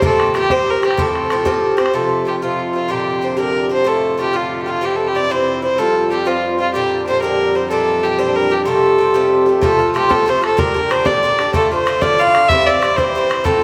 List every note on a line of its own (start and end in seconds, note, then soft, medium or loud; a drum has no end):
0.02 0.33 A#2 medium
0.02 0.34 E3 medium
0.02 0.35 C4 medium
0.02 0.35 G4 medium
0.02 0.34 A4 medium
0.02 bodhran medium
0.20 bodhran medium
0.34 0.49 A#2 medium
0.34 0.50 E3 medium
0.34 0.50 C4 medium
0.34 0.49 G4 medium
0.34 0.53 G4 medium
0.34 bodhran medium
0.50 0.84 A#2 soft
0.50 0.84 E3 medium
0.50 0.83 C4 medium
0.50 0.81 G4 medium
0.50 0.72 C5 medium
0.50 bodhran medium
0.68 0.84 A#4 medium
0.68 bodhran soft
0.82 0.98 E3 soft
0.82 0.98 C4 soft
0.82 0.97 G4 soft
0.82 1.02 G4 medium
0.82 bodhran medium
0.91 bodhran medium
0.97 1.29 A2 medium
0.97 1.30 F3 medium
0.97 1.30 C4 medium
0.97 1.31 G4 medium
0.97 1.78 A4 medium
0.97 bodhran medium
1.15 bodhran soft
1.30 1.45 A2 medium
1.30 1.45 F3 medium
1.30 1.45 C4 medium
1.30 1.44 G4 medium
1.30 bodhran medium
1.45 1.79 A2 medium
1.45 1.79 F3 medium
1.45 1.77 C4 medium
1.45 1.76 G4 medium
1.45 bodhran medium
1.64 bodhran soft
1.77 1.93 F3 soft
1.77 1.94 C4 medium
1.77 1.93 G4 medium
1.77 1.96 C5 medium
1.77 bodhran medium
1.86 bodhran medium
1.93 5.76 F2 medium
1.93 2.24 C3 medium
1.93 5.82 C3 medium
1.93 2.25 F3 medium
1.93 2.26 A3 medium
1.93 2.27 F4 medium
1.93 2.27 A4 medium
2.25 2.41 C3 soft
2.25 2.42 F3 soft
2.25 2.41 A3 soft
2.25 2.41 F4 soft
2.25 2.34 G4 medium
2.42 2.76 C3 soft
2.42 2.75 F3 soft
2.42 2.74 A3 medium
2.42 2.72 F4 medium
2.73 2.88 F3 soft
2.73 2.89 A3 soft
2.73 2.89 F4 soft
2.73 2.92 F4 medium
2.88 3.20 A#2 medium
2.88 3.21 D3 medium
2.88 3.21 D4 medium
2.88 3.25 G4 medium
2.88 3.22 G4 medium
3.21 3.37 A#2 soft
3.21 3.37 D3 soft
3.21 3.37 D4 soft
3.21 3.35 G4 soft
3.21 3.38 C5 medium
3.37 3.71 A#2 soft
3.37 3.71 D3 medium
3.37 3.70 D4 soft
3.37 3.68 G4 medium
3.37 3.69 A#4 medium
3.69 3.83 D3 soft
3.69 3.85 D4 soft
3.69 3.85 G4 soft
3.69 3.89 C5 medium
3.84 4.16 A2 medium
3.84 4.17 D3 medium
3.84 4.18 A3 medium
3.84 4.19 F4 medium
3.84 4.19 A4 medium
4.18 4.33 A2 medium
4.18 4.33 D3 medium
4.18 4.32 A3 medium
4.18 4.32 F4 medium
4.18 4.37 G4 medium
4.33 4.67 A2 soft
4.33 4.67 D3 soft
4.33 4.66 A3 medium
4.33 4.65 F4 medium
4.33 4.62 F4 medium
4.62 4.81 F4 soft
4.62 4.71 G4 medium
4.67 4.82 D3 soft
4.67 4.82 A3 soft
4.67 4.87 F4 medium
4.81 5.14 G2 medium
4.81 5.14 E3 medium
4.81 5.15 C4 medium
4.81 5.16 E4 medium
4.85 4.97 G4 medium
4.96 5.09 A4 medium
5.07 5.18 G4 medium
5.15 5.30 G2 soft
5.15 5.30 E3 medium
5.15 5.29 C4 soft
5.15 5.29 E4 medium
5.15 5.33 D5 medium
5.30 5.64 G2 soft
5.30 5.64 E3 medium
5.30 5.63 C4 medium
5.30 5.61 E4 medium
5.30 5.63 C5 medium
5.62 5.78 E3 soft
5.62 5.78 C4 soft
5.62 5.78 E4 soft
5.62 5.80 C5 medium
5.77 9.65 F2 medium
5.77 6.09 G2 medium
5.77 6.10 F3 medium
5.77 9.65 G3 medium
5.77 6.11 C4 medium
5.77 6.11 F4 medium
5.77 6.11 A4 medium
6.10 6.26 G2 soft
6.10 6.26 F3 medium
6.10 6.25 C4 soft
6.10 6.24 F4 soft
6.10 6.28 G4 medium
6.25 6.60 G2 soft
6.25 6.59 F3 medium
6.25 6.59 C4 medium
6.25 6.57 F4 medium
6.25 6.59 F4 medium
6.59 6.75 F3 soft
6.59 6.75 C4 soft
6.59 6.74 F4 soft
6.59 6.73 F4 medium
6.74 7.06 A#2 medium
6.74 7.07 D3 medium
6.74 7.08 D4 medium
6.74 7.05 G4 medium
6.74 7.10 G4 medium
7.07 7.22 A#2 medium
7.07 7.23 D3 soft
7.07 7.22 D4 soft
7.07 7.21 G4 medium
7.07 7.21 C5 medium
7.22 7.56 A#2 medium
7.22 7.56 D3 medium
7.22 7.55 D4 medium
7.22 7.55 G4 medium
7.22 7.57 A#4 medium
7.55 7.71 D3 soft
7.55 7.70 D4 soft
7.55 7.70 G4 soft
7.55 7.69 C5 medium
7.70 8.02 A#2 medium
7.70 8.04 E3 medium
7.70 8.04 D4 medium
7.70 8.04 G4 medium
7.70 8.04 A4 medium
8.03 8.18 A#2 soft
8.03 8.18 E3 medium
8.03 8.18 D4 medium
8.03 8.20 G4 medium
8.03 8.17 G4 soft
8.18 8.52 A#2 soft
8.18 8.52 E3 medium
8.18 8.51 D4 medium
8.18 8.50 G4 medium
8.18 8.37 C5 medium
8.36 8.53 A#4 medium
8.51 8.66 E3 soft
8.51 8.67 D4 soft
8.51 8.66 G4 soft
8.51 8.64 G4 medium
8.65 8.97 C3 medium
8.65 8.98 F3 medium
8.65 8.99 A3 medium
8.65 9.00 G4 medium
8.65 9.42 A4 medium
8.98 9.14 C3 medium
8.98 9.14 F3 medium
8.98 9.13 A3 medium
8.98 9.13 G4 medium
9.14 9.48 C3 medium
9.14 9.48 F3 medium
9.14 9.47 A3 medium
9.14 9.45 G4 medium
9.46 9.62 F3 soft
9.46 9.62 A3 soft
9.46 9.62 G4 medium
9.61 9.79 C3 medium
9.61 9.80 F3 medium
9.61 9.79 A3 medium
9.61 9.77 F4 medium
9.61 9.93 A4 medium
9.61 bodhran medium
9.79 9.94 F3 soft
9.79 9.94 A3 soft
9.79 9.94 F4 soft
9.79 bodhran soft
9.94 10.09 C3 soft
9.94 10.09 F3 soft
9.94 10.08 A3 medium
9.94 10.08 F4 medium
9.94 10.12 G4 medium
9.94 bodhran medium
10.09 10.25 C3 medium
10.09 10.26 F3 medium
10.09 10.27 A3 medium
10.09 10.27 F4 medium
10.09 10.31 A4 medium
10.09 bodhran medium
10.26 10.42 C3 medium
10.26 10.42 F3 medium
10.26 10.41 A3 medium
10.26 10.40 F4 medium
10.26 10.44 C5 medium
10.41 10.57 F3 soft
10.41 10.58 A3 soft
10.41 10.57 F4 soft
10.41 10.60 A4 loud
10.41 bodhran medium
10.57 10.75 A#2 medium
10.57 10.75 D3 medium
10.57 10.75 D4 medium
10.57 10.73 G4 medium
10.57 10.92 A#4 medium
10.57 bodhran medium
10.74 10.89 D3 soft
10.74 10.90 D4 soft
10.74 10.90 G4 medium
10.74 bodhran soft
10.89 11.05 A#2 medium
10.89 11.05 D3 medium
10.89 11.04 D4 medium
10.89 11.04 G4 medium
10.89 11.08 C5 loud
10.89 bodhran medium
11.05 11.22 A#2 medium
11.05 11.23 D3 medium
11.05 11.23 D4 medium
11.05 11.23 G4 medium
11.05 11.54 D5 medium
11.05 bodhran medium
11.23 11.38 A#2 medium
11.23 11.39 D3 medium
11.23 11.39 D4 medium
11.23 11.37 G4 medium
11.38 11.53 D3 soft
11.38 11.54 D4 soft
11.38 11.53 G4 soft
11.38 bodhran medium
11.53 11.71 A2 medium
11.53 11.71 D3 medium
11.53 11.71 A3 medium
11.53 11.70 F4 medium
11.53 11.70 A4 medium
11.53 bodhran medium
11.71 11.86 D3 soft
11.71 11.87 A3 soft
11.71 11.86 F4 soft
11.71 12.03 C5 medium
11.71 bodhran soft
11.86 12.01 A2 soft
11.86 12.02 D3 medium
11.86 12.01 A3 medium
11.86 12.00 F4 medium
11.86 bodhran medium
12.01 12.17 A2 medium
12.01 12.18 D3 medium
12.01 12.19 A3 medium
12.01 12.19 F4 medium
12.01 12.21 D5 loud
12.01 bodhran medium
12.18 12.34 A2 medium
12.18 12.34 D3 medium
12.18 12.34 A3 medium
12.18 12.33 F4 medium
12.18 12.50 F5 loud
12.34 12.50 D3 soft
12.34 12.50 A3 medium
12.34 12.49 F4 soft
12.34 bodhran medium
12.48 12.67 G2 medium
12.48 12.67 E3 medium
12.48 12.68 C4 medium
12.48 12.66 E4 medium
12.48 12.68 E5 loud
12.48 bodhran medium
12.66 12.81 E3 soft
12.66 12.82 C4 soft
12.66 12.82 E4 soft
12.66 12.98 D5 medium
12.66 bodhran soft
12.82 12.97 G2 medium
12.82 12.97 E3 medium
12.82 12.97 C4 medium
12.82 12.96 E4 medium
12.82 bodhran medium
12.96 13.14 G2 medium
12.96 13.15 E3 medium
12.96 13.15 C4 medium
12.96 13.15 E4 medium
12.96 13.46 C5 medium
12.96 bodhran medium
13.15 13.30 G2 medium
13.15 13.30 E3 medium
13.15 13.30 C4 medium
13.15 13.28 E4 medium
13.29 13.44 E3 soft
13.29 13.44 C4 soft
13.29 13.45 E4 soft
13.29 bodhran medium
13.44 13.62 A2 medium
13.44 13.62 F3 medium
13.44 13.61 C4 medium
13.44 13.60 F4 medium
13.44 13.63 A4 medium
13.44 bodhran medium